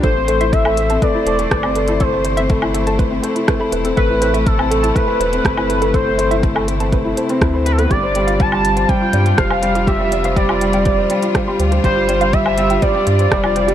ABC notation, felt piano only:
X:1
M:4/4
L:1/16
Q:1/4=122
K:Gmix
V:1 name="Felt piano"
A, C A, E A, A, A, C A, E A, A, A, C A, E | A, A, A, C A, E A, A, A, C A, E A, A, A, C | A, E A, A, A, C A, E A, A, A, C A, E A, A, | A, C A, E A, A, A, C A, E A, C E c A, B, |
G, c G, F G, G, G, c G, F G, G, G, c G, F | G, G, G, c G, F G, G, G, c G, F G, G, G, c | G, F G, G, G, c G, F G, G, G, c G, F G, G, |]